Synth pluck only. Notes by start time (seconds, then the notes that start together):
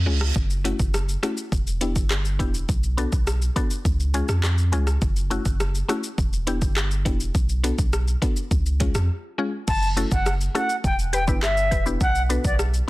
0.06 G#3 C#4 F4 G#4
0.64 A3 C#4 E4 F#4
1.23 A3 C#4 E4 F#4
1.81 B3 D4 E4 G4
2.39 B3 D4 E4 G4
2.97 B3 D4 F#4 A4
3.56 B3 D4 F#4 A4
4.14 G#3 C#4 F4 G#4
4.72 G#3 C#4 F4 G#4
5.30 A3 C#4 E4 F#4
5.88 A3 C#4 E4 F#4
6.47 B3 D4 E4 G4
7.05 B3 D4 E4 G4
7.63 B3 D4 F#4 A4
8.22 B3 D4 F#4 A4
8.80 G#3 C#4 F4 G#4
9.38 G#3 C#4 F4 G#4
9.96 A3 C#4 E4 F#4 A4
10.55 A3 C#4 E4 F#4 A4
11.13 G4 B4
11.27 B3 D4 E4 G4 B4
11.71 G4 B4
11.86 B3 D4 E4 G4 B4
12.29 B3 D4 F#4 A4 B4